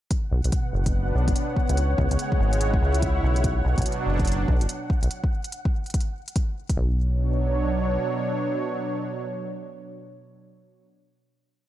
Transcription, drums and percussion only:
0.11 kick, closed hi-hat
0.44 closed hi-hat
0.52 kick, closed hi-hat
0.86 kick, closed hi-hat
1.28 kick, closed hi-hat
1.36 closed hi-hat
1.56 kick
1.69 closed hi-hat
1.77 closed hi-hat
1.98 kick
2.11 closed hi-hat
2.19 closed hi-hat
2.32 kick
2.53 closed hi-hat
2.61 closed hi-hat
2.74 kick
2.94 closed hi-hat
3.02 kick, closed hi-hat
3.36 closed hi-hat
3.44 kick, closed hi-hat
3.78 kick, closed hi-hat
3.82 closed hi-hat
3.86 closed hi-hat
3.92 closed hi-hat
4.19 kick, closed hi-hat
4.25 closed hi-hat
4.27 closed hi-hat
4.32 closed hi-hat
4.48 kick
4.61 closed hi-hat
4.69 closed hi-hat
4.90 kick
5.03 closed hi-hat
5.11 closed hi-hat
5.24 kick
5.44 closed hi-hat
5.52 closed hi-hat
5.65 kick
5.86 closed hi-hat
5.90 closed hi-hat
5.94 kick, closed hi-hat
6.00 closed hi-hat
6.28 closed hi-hat
6.36 kick, closed hi-hat
6.69 kick, closed hi-hat

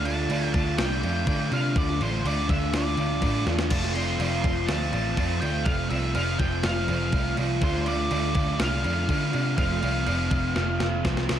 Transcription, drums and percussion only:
0.05 crash
0.30 crash
0.54 kick, crash
0.78 snare, crash
1.03 crash
1.27 kick, crash
1.52 crash
1.76 kick, crash
1.89 snare
2.01 crash
2.26 crash
2.49 kick, crash
2.74 snare, crash
2.97 crash
3.22 kick, crash
3.47 snare
3.59 snare
3.70 kick, crash
3.84 snare
3.96 crash
4.20 crash
4.44 kick, crash
4.68 snare, crash
4.93 crash
5.17 kick, crash
5.42 crash
5.66 kick, crash
5.90 crash
6.15 crash
6.39 kick, crash
6.63 snare, crash
6.88 crash
7.12 kick, crash
7.37 crash
7.61 kick, crash
7.86 crash
8.11 crash
8.35 kick, crash
8.60 snare, crash
8.84 crash
9.09 kick, crash
9.33 crash
9.58 kick, crash
9.71 snare
9.83 crash
10.07 crash
10.31 kick, crash
10.56 snare
10.80 snare
11.05 kick, snare
11.17 snare
11.29 snare

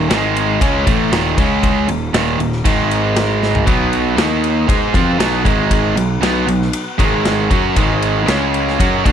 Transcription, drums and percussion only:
0.11 snare, ride
0.37 ride
0.61 kick, ride
0.87 kick, ride
1.13 snare, ride
1.38 kick, ride
1.63 kick, ride
1.89 ride
2.14 snare, ride
2.40 ride
2.52 snare
2.65 kick, ride
2.91 ride
3.16 snare, ride
3.43 snare
3.55 floor tom
3.67 kick, ride
3.93 ride
4.18 snare, ride
4.44 ride
4.69 kick, ride
4.94 kick, ride
5.20 snare, ride
5.45 kick, ride
5.71 kick, ride
5.97 ride
6.23 snare, ride
6.48 ride
6.62 snare
6.73 ride
6.99 kick, ride
7.25 snare, ride
7.51 kick, ride
7.76 kick, ride
8.02 ride
8.28 snare, ride
8.54 ride
8.68 snare
8.80 kick, ride
9.05 kick, ride

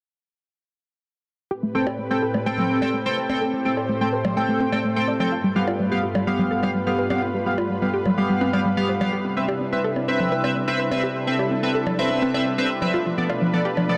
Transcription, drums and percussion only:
1.87 high bongo
2.34 high bongo
2.58 low conga
2.82 high bongo
3.29 high bongo, high conga
3.77 high bongo
4.25 high bongo, low conga
4.60 high conga
4.72 high bongo
5.20 high bongo, low conga
5.67 high bongo
6.15 high bongo
6.39 low conga
6.63 high bongo
7.10 high bongo, high conga
7.58 high bongo
8.06 high bongo, low conga
8.41 high conga
8.53 high bongo
9.01 high bongo, low conga
9.48 high bongo
9.96 high bongo
10.20 low conga
10.44 high bongo
10.91 high bongo, high conga
11.39 high bongo
11.87 high bongo, low conga
12.22 high conga
12.34 high bongo
12.82 high bongo, low conga
13.29 high bongo
13.77 high bongo

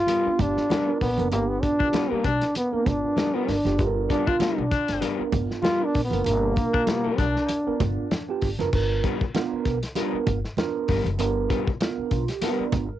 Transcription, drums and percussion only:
0.08 closed hi-hat, muted conga
0.39 kick, closed hi-hat, muted conga, low conga
0.57 snare
0.70 snare, closed hi-hat, high conga
1.01 kick, snare, open hi-hat
1.18 closed hi-hat, high conga
1.32 closed hi-hat, muted conga
1.63 kick, closed hi-hat
1.80 kick
1.93 snare, closed hi-hat, high conga
2.24 kick, closed hi-hat
2.41 snare, closed hi-hat
2.55 closed hi-hat, muted conga
2.86 kick, snare, closed hi-hat, muted conga, low conga
3.17 snare, closed hi-hat, high conga
3.48 snare, open hi-hat
3.65 snare, closed hi-hat, high conga
3.79 kick, closed hi-hat, muted conga
4.10 kick, closed hi-hat
4.27 kick
4.40 snare, closed hi-hat, high conga
4.71 kick, snare, closed hi-hat
4.88 snare, closed hi-hat
5.02 closed hi-hat, muted conga
5.32 kick, closed hi-hat, muted conga, low conga
5.51 snare
5.62 snare, closed hi-hat, high conga
5.95 kick, snare, open hi-hat
6.11 closed hi-hat, high conga
6.24 closed hi-hat, muted conga
6.56 kick, closed hi-hat, muted conga
6.74 kick
6.87 snare, closed hi-hat, high conga
7.18 kick, closed hi-hat
7.36 snare
7.48 closed hi-hat, muted conga
7.80 kick, snare, closed hi-hat, muted conga, low conga
8.11 snare, closed hi-hat, high conga
8.41 kick, snare, open hi-hat
8.59 snare, closed hi-hat, high conga
8.73 kick, crash, muted conga
9.04 kick, closed hi-hat
9.21 kick
9.35 snare, closed hi-hat, high conga
9.65 kick, snare, closed hi-hat
9.83 snare, closed hi-hat
9.96 closed hi-hat, muted conga
10.27 kick, closed hi-hat, muted conga, low conga
10.45 snare
10.57 snare, closed hi-hat, high conga
10.88 kick, snare, open hi-hat
11.05 closed hi-hat, high conga
11.19 closed hi-hat, muted conga
11.50 kick, closed hi-hat
11.67 kick
11.80 snare, closed hi-hat, high conga
12.11 kick, closed hi-hat
12.28 snare, closed hi-hat
12.42 closed hi-hat, muted conga
12.72 kick, snare, closed hi-hat, muted conga, low conga

